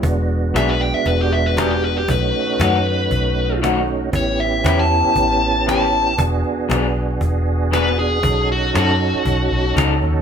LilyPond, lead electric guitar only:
\new Staff \with { instrumentName = "Lead electric guitar" } { \time 4/4 \key b \dorian \tempo 4 = 117 r4 e''16 b'16 g''16 e''16 b'16 g'16 e''16 b'16 g'16 g'16 b'16 g'16 | b'2. r4 | cis''8 e''8 e''16 a''4.~ a''16 a''4 | r2. b'8 gis'8~ |
gis'8 fis'8 fis'2 r4 | }